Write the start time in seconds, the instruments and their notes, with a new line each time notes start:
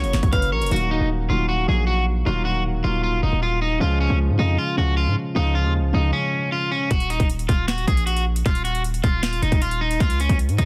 Already playing: grand piano C#3 F#3 A#3 F#4, clean electric guitar C#5, soft synth lead C#5
0.04 808-style bass F#1, closed hi-hat
0.13 808-style bass F#1, finger snap, snare, closed hi-hat
0.23 808-style bass F#1, kick, closed hi-hat
0.32 808-style bass F#1, soft synth lead B4, clean electric guitar F5, kick, closed hi-hat
0.42 closed hi-hat
0.52 808-style bass A#1, soft synth lead A#4, clean electric guitar C#5
0.62 808-style bass F#1, closed hi-hat
0.66 grand piano D#3, closed hi-hat
0.71 808-style bass D#1, grand piano F#3 A#3 F#4, clean electric guitar F#4, closed hi-hat
0.76 closed hi-hat
0.91 clean electric guitar D#4
1.00 808-style bass D#1
1.28 808-style bass D#1, grand piano D#3 F#3 A#3 F#4, clean electric guitar F4
1.49 clean electric guitar F#4
1.67 808-style bass A#1, grand piano D#3 F#3 A#3 F#4, clean electric guitar G#4
1.87 clean electric guitar F#4
2.25 808-style bass D#1, grand piano D#3 F#3 A#3 F#4, clean electric guitar F4
2.45 clean electric guitar F#4
2.83 808-style bass D#1, grand piano D#3 F#3 A#3 F#4, clean electric guitar F4
3.03 clean electric guitar F4
3.23 808-style bass D#1, clean electric guitar D#4
3.33 808-style bass D#1
3.43 clean electric guitar F4
3.62 clean electric guitar D#4
3.80 808-style bass C#2, grand piano C#3 F3 G#3 F4, clean electric guitar F4
4.01 clean electric guitar C#4
4.10 808-style bass C#2
4.29 808-style bass G#2
4.38 808-style bass F2, grand piano C#3 F3 G#3 F4, clean electric guitar D#4
4.58 clean electric guitar F4
4.77 808-style bass C#2, grand piano C#3 F3 G#3 F4, clean electric guitar F#4
4.97 clean electric guitar F4
5.07 808-style bass G#2
5.35 808-style bass C#2, grand piano C#3 F3 G#3 F4, clean electric guitar D#4
5.55 clean electric guitar F4
5.65 808-style bass D#2
5.79 808-style bass C#2
5.93 808-style bass C#2, grand piano C#3 F3 G#3 F4, clean electric guitar D#4
6.13 clean electric guitar C#4
6.52 clean electric guitar F4
6.71 clean electric guitar C#4
6.91 808-style bass D#1, clean electric guitar F#4, kick, closed hi-hat
7.00 closed hi-hat
7.10 clean electric guitar D#4, closed hi-hat
7.20 808-style bass D#1, kick, closed hi-hat
7.30 closed hi-hat
7.39 closed hi-hat
7.49 808-style bass D#1, clean electric guitar F4, kick, closed hi-hat
7.68 clean electric guitar F#4, finger snap, snare, closed hi-hat
7.78 closed hi-hat
7.88 808-style bass A#1, clean electric guitar G#4, kick, closed hi-hat
7.97 closed hi-hat
8.06 clean electric guitar F#4, closed hi-hat
8.17 closed hi-hat
8.36 closed hi-hat
8.46 808-style bass D#1, clean electric guitar F4, kick, closed hi-hat
8.55 closed hi-hat
8.64 clean electric guitar F#4, closed hi-hat
8.75 closed hi-hat
8.84 closed hi-hat
8.94 closed hi-hat
9.04 808-style bass D#1, clean electric guitar F4, kick, closed hi-hat
9.23 clean electric guitar F4, finger snap, snare, closed hi-hat
9.33 closed hi-hat
9.42 808-style bass D#1, clean electric guitar D#4, closed hi-hat
9.52 808-style bass D#1, kick, closed hi-hat
9.62 clean electric guitar F4, closed hi-hat
9.71 closed hi-hat
9.81 clean electric guitar D#4
9.91 closed hi-hat
10.00 808-style bass C#2, clean electric guitar F4, kick, closed hi-hat
10.10 closed hi-hat
10.20 clean electric guitar C#4, closed hi-hat
10.29 808-style bass C#2, kick, closed hi-hat
10.39 closed hi-hat
10.49 808-style bass G#2, closed hi-hat
10.58 808-style bass F2, clean electric guitar D#4, kick, closed hi-hat